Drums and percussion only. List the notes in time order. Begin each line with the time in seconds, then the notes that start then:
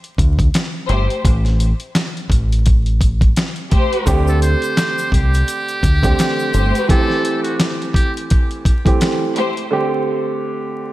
0.04 closed hi-hat
0.18 kick, closed hi-hat
0.39 kick, closed hi-hat
0.54 snare, closed hi-hat
0.89 closed hi-hat
1.10 closed hi-hat
1.25 kick, closed hi-hat
1.45 snare, closed hi-hat
1.60 closed hi-hat
1.80 closed hi-hat
1.95 snare, closed hi-hat
2.17 closed hi-hat
2.30 kick, closed hi-hat
2.53 closed hi-hat
2.66 kick, closed hi-hat
2.86 closed hi-hat
3.01 kick, closed hi-hat
3.21 kick, closed hi-hat
3.36 snare, closed hi-hat
3.56 closed hi-hat
3.71 kick, closed hi-hat
3.93 closed hi-hat
4.07 kick, closed hi-hat, shaker
4.27 shaker
4.42 closed hi-hat, shaker
4.62 closed hi-hat, shaker
4.77 snare, closed hi-hat, shaker
4.98 closed hi-hat, shaker
5.12 kick, closed hi-hat
5.34 closed hi-hat, shaker
5.48 closed hi-hat, shaker
5.68 closed hi-hat, shaker
5.83 kick, closed hi-hat, shaker
6.03 kick, closed hi-hat, shaker
6.19 snare, closed hi-hat, shaker
6.39 shaker
6.54 closed hi-hat, shaker
6.75 closed hi-hat, shaker
6.89 kick, closed hi-hat
7.10 snare
7.25 closed hi-hat
7.45 closed hi-hat
7.60 snare, closed hi-hat
7.82 closed hi-hat
7.94 kick, closed hi-hat
8.17 closed hi-hat
8.30 kick, closed hi-hat
8.51 closed hi-hat
8.65 kick, closed hi-hat
8.86 kick, closed hi-hat
9.01 snare, closed hi-hat
9.36 closed hi-hat
9.57 closed hi-hat